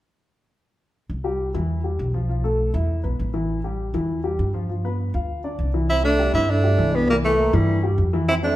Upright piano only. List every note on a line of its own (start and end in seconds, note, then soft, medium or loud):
1.24 1.49 G3 medium
1.24 1.49 G4 medium
1.54 1.79 E3 medium
1.54 1.79 E4 medium
1.84 2.09 G3 soft
1.84 2.09 G4 medium
2.14 2.26 F3 medium
2.14 2.27 F4 medium
2.29 2.41 F3 medium
2.29 2.42 F4 medium
2.44 2.69 A3 medium
2.44 2.69 A4 medium
2.74 2.98 E4 medium
2.74 2.99 E5 medium
3.03 3.28 B3 soft
3.03 3.28 B4 medium
3.34 3.58 E3 medium
3.34 3.59 E4 medium
3.64 3.89 G3 medium
3.64 3.89 G4 medium
3.94 4.19 E3 medium
3.94 4.19 E4 medium
4.24 4.48 G3 medium
4.24 4.48 G4 medium
4.54 4.66 F3 medium
4.54 4.66 F4 medium
4.69 4.81 F3 medium
4.69 4.81 F4 medium
4.84 5.09 B3 medium
4.84 5.09 B4 medium
5.14 5.39 F4 medium
5.14 5.39 F5 medium
5.44 5.68 D4 soft
5.44 5.69 D5 soft
5.74 5.86 E3 medium
5.74 5.86 E4 medium
6.04 6.16 A3 medium
6.04 6.16 A4 medium
6.19 6.31 G3 medium
6.19 6.31 G4 medium
6.33 6.58 E4 medium
6.33 6.58 E5 medium
6.64 6.76 G3 medium
6.64 6.76 G4 medium
6.78 7.03 E3 medium
6.78 7.03 E4 medium
7.08 7.33 E3 medium
7.08 7.33 E4 medium
7.38 7.50 A#3 medium
7.38 7.51 A#4 medium
7.53 7.78 E3 medium
7.53 7.78 E4 medium
7.83 8.08 G3 medium
7.83 8.08 G4 medium
8.13 8.37 E3 medium
8.13 8.38 E4 medium
8.43 8.55 C4 medium
8.43 8.55 C5 medium